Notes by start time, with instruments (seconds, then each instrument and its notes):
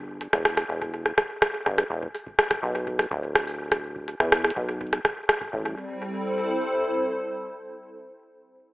Already playing: acid bass G1
0.21 closed hi-hat
0.33 acid bass E1, kick, cross-stick
0.45 cross-stick
0.57 cross-stick, closed hi-hat
0.69 acid bass E1
0.81 kick
1.06 cross-stick
1.18 kick, cross-stick
1.42 kick, cross-stick, closed hi-hat
1.66 acid bass G1, kick, cross-stick
1.78 cross-stick, closed hi-hat
1.90 acid bass E1
2.02 kick
2.15 open hi-hat
2.27 kick
2.39 cross-stick
2.51 kick, cross-stick, closed hi-hat
2.63 acid bass B1
2.87 kick
2.99 cross-stick, open hi-hat
3.11 acid bass D1, kick
3.35 kick, cross-stick, closed hi-hat
3.47 open hi-hat
3.72 kick, cross-stick, closed hi-hat
3.96 kick
4.08 closed hi-hat
4.20 acid bass E2, kick, cross-stick
4.32 cross-stick
4.44 cross-stick
4.50 closed hi-hat
4.56 acid bass B1, kick
4.81 kick
4.93 cross-stick, closed hi-hat
5.05 kick, cross-stick
5.29 cross-stick, closed hi-hat
5.41 kick
5.53 acid bass A1, analog synth pad G3, kick
5.60 analog synth pad C4
5.91 analog synth pad E4
5.99 analog synth pad A4
6.06 analog synth pad C5